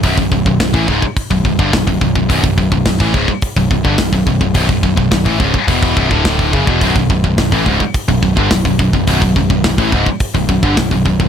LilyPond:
<<
  \new Staff \with { instrumentName = "Distorted electric guitar" } { \clef bass \time 4/4 \key b \minor \tempo 4 = 106 <b,, fis,>16 <b,, fis,>16 <b,, fis,>16 <b,, fis,>16 <b,, fis,>16 <a, e>16 <cis, gis,>16 r8 <b,, fis,>16 <b,, fis,>16 <g, d>16 <b,, fis,>16 <b,, fis,>16 <b,, fis,>16 <b,, fis,>16 | <b,, fis,>16 <b,, fis,>16 <b,, fis,>16 <b,, fis,>16 <b,, fis,>16 <a, e>16 <cis, gis,>16 r8 <b,, fis,>16 <b,, fis,>16 <g, d>16 <b,, fis,>16 <b,, fis,>16 <b,, fis,>16 <b,, fis,>16 | <b,, fis,>16 <b,, fis,>16 <b,, fis,>16 <b,, fis,>16 <b,, fis,>16 <a, e>16 <cis, gis,>16 r16 <e, b, e>8 <b,, fis,>16 <d, a, d>8. <fis, cis>16 <e, b,>16 | <b,, fis,>16 <b,, fis,>16 <b,, fis,>16 <b,, fis,>16 <b,, fis,>16 <a, e>16 <cis, gis,>16 r8 <b,, fis,>16 <b,, fis,>16 <g, d>16 <b,, fis,>16 <b,, fis,>16 <b,, fis,>16 <b,, fis,>16 |
<b,, fis,>16 <b,, fis,>16 <b,, fis,>16 <b,, fis,>16 <b,, fis,>16 <a, e>16 <cis, gis,>16 r8 <b,, fis,>16 <b,, fis,>16 <g, d>16 <b,, fis,>16 <b,, fis,>16 <b,, fis,>16 <b,, fis,>16 | }
  \new Staff \with { instrumentName = "Distorted electric guitar" } { \clef bass \time 4/4 \key b \minor <b,, fis,>16 <b,, fis,>16 <b,, fis,>16 <b,, fis,>16 <b,, fis,>16 <a, e>16 <cis, gis,>16 r8 <b,, fis,>16 <b,, fis,>16 <g, d>16 <b,, fis,>16 <b,, fis,>16 <b,, fis,>16 <b,, fis,>16 | <b,, fis,>16 <b,, fis,>16 <b,, fis,>16 <b,, fis,>16 <b,, fis,>16 <a, e>16 <cis, gis,>16 r8 <b,, fis,>16 <b,, fis,>16 <g, d>16 <b,, fis,>16 <b,, fis,>16 <b,, fis,>16 <b,, fis,>16 | <b,, fis,>16 <b,, fis,>16 <b,, fis,>16 <b,, fis,>16 <b,, fis,>16 <a, e>16 <cis, gis,>16 r16 <e, b, e>8 <b,, fis,>16 <d, a, d>8. <fis, cis>16 <e, b,>16 | <b,, fis,>16 <b,, fis,>16 <b,, fis,>16 <b,, fis,>16 <b,, fis,>16 <a, e>16 <cis, gis,>16 r8 <b,, fis,>16 <b,, fis,>16 <g, d>16 <b,, fis,>16 <b,, fis,>16 <b,, fis,>16 <b,, fis,>16 |
<b,, fis,>16 <b,, fis,>16 <b,, fis,>16 <b,, fis,>16 <b,, fis,>16 <a, e>16 <cis, gis,>16 r8 <b,, fis,>16 <b,, fis,>16 <g, d>16 <b,, fis,>16 <b,, fis,>16 <b,, fis,>16 <b,, fis,>16 | }
  \new Staff \with { instrumentName = "Overdriven electric guitar" } { \clef bass \time 4/4 \key b \minor r1 | r1 | r1 | <b,, fis,>16 <b,, fis,>16 <b,, fis,>16 <b,, fis,>16 <b,, fis,>16 <a, e>16 <cis, gis,>16 r8 <b,, fis,>16 <b,, fis,>16 <g, d>16 <b,, fis,>16 <b,, fis,>16 <b,, fis,>16 <b,, fis,>16 |
<b,, fis,>16 <b,, fis,>16 <b,, fis,>16 <b,, fis,>16 <b,, fis,>16 <a, e>16 <cis, gis,>16 r8 <b,, fis,>16 <b,, fis,>16 <g, d>16 <b,, fis,>16 <b,, fis,>16 <b,, fis,>16 <b,, fis,>16 | }
  \new Staff \with { instrumentName = "Picked electric bass" } { \clef bass \time 4/4 \key b \minor b,,,16 b,,,16 b,,,16 b,,,16 b,,,16 a,,16 cis,,16 r8 b,,,16 b,,,16 g,,16 b,,,16 b,,,16 b,,,16 b,,,16 | b,,,16 b,,,16 b,,,16 b,,,16 b,,,16 a,,16 cis,,16 r8 b,,,16 b,,,16 g,,16 b,,,16 b,,,16 b,,,16 b,,,16 | b,,,16 b,,,16 b,,,16 b,,,16 b,,,16 a,,16 cis,,16 r16 e,,8 b,,,16 d,,8. fis,,16 e,,16 | b,,,16 b,,,16 b,,,16 b,,,16 b,,,16 a,,16 cis,,16 r8 b,,,16 b,,,16 g,,16 b,,,16 b,,,16 b,,,16 b,,,16 |
b,,,16 b,,,16 b,,,16 b,,,16 b,,,16 a,,16 cis,,16 r8 b,,,16 b,,,16 g,,16 b,,,16 b,,,16 b,,,16 b,,,16 | }
  \new DrumStaff \with { instrumentName = "Drums" } \drummode { \time 4/4 <hho bd>16 bd16 bd16 bd16 <hho bd sn>16 bd16 bd16 bd16 <hho bd>16 bd16 bd16 bd16 <hho bd sn>16 bd16 bd16 bd16 | <hho bd>16 bd16 bd16 bd16 <hho bd sn>16 bd16 bd16 bd16 <hho bd>16 bd16 bd16 bd16 <hho bd sn>16 bd16 bd16 bd16 | <hho bd>16 bd16 bd16 bd16 <hho bd sn>16 bd16 bd16 bd16 <hho bd>16 bd16 bd16 bd16 <hho bd sn>16 bd16 bd16 bd16 | <hho bd>16 bd16 bd16 bd16 <hho bd sn>16 bd16 bd16 bd16 <hho bd>16 bd16 bd16 bd16 <hho bd sn>16 bd16 bd16 bd16 |
<hho bd>16 bd16 bd16 bd16 <hho bd sn>16 bd16 bd16 bd16 <hho bd>16 bd16 bd16 bd16 <hho bd sn>16 bd16 bd16 bd16 | }
>>